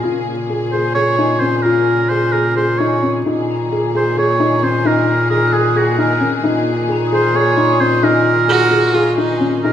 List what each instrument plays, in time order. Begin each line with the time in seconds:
Already playing: string section C#3 A#3 G#4
0.03 bass clarinet A#2, felt piano F4
0.49 felt piano G#4
0.72 felt piano G#4, oboe C5
0.95 felt piano G#4, oboe C#5
1.18 felt piano D#4
1.40 felt piano C#4, oboe C5
1.57 oboe C5
1.62 felt piano F4, oboe A#4
2.09 felt piano G#4, oboe C5
2.32 felt piano G#4, oboe A#4
2.56 felt piano G#4, oboe C5
2.79 felt piano D#4, oboe C#5
3.03 felt piano C#4
3.26 bass clarinet A#2, string section D#3 A#3 G#4, felt piano D#4
3.51 glockenspiel A#5
3.72 felt piano G#4
3.95 felt piano G#4, oboe C5
4.17 felt piano G#4, oboe C#5
4.40 felt piano D#4
4.62 felt piano C#4, oboe C5
4.85 felt piano D#4, oboe A#4
5.30 felt piano G#4, oboe A#4, glockenspiel D#6
5.47 glockenspiel F#6
5.53 felt piano G#4, oboe G#4
5.65 glockenspiel G#6
5.76 oboe F#4, felt piano G#4
5.98 felt piano D#4, oboe A#4
6.20 felt piano C#4
6.43 bass clarinet A#2, felt piano D#4
6.88 felt piano G#4, glockenspiel A#5
7.07 glockenspiel D#6
7.12 felt piano G#4, oboe C5
7.22 glockenspiel F6
7.35 felt piano G#4, oboe C#5
7.57 felt piano D#4, glockenspiel C6
7.73 glockenspiel D#6
7.80 felt piano C#4, oboe C5
8.03 felt piano D#4, oboe A#4
8.48 viola F#4, felt piano G#4
8.71 felt piano G#4
8.94 viola F4, felt piano G#4, glockenspiel C#6
9.18 felt piano D#4, viola D#4
9.40 felt piano C#4
9.64 bass clarinet A#2, string section C#3 A#3 G#4, felt piano D#4, oboe A#4